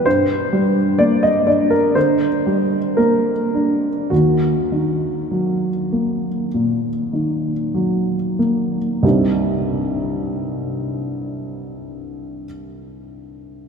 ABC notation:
X:1
M:4/4
L:1/16
Q:1/4=51
K:Cm
V:1 name="Upright piano"
c4 d e d B c4 B4 | _G12- G2 z2 | [C,,G,,G,CEG]16 |]
V:2 name="Upright piano" clef=bass
G,,2 G,2 B,2 D2 D,2 G,2 B,2 D2 | E,,2 E,2 _G,2 B,2 B,,2 E,2 G,2 B,2 | z16 |]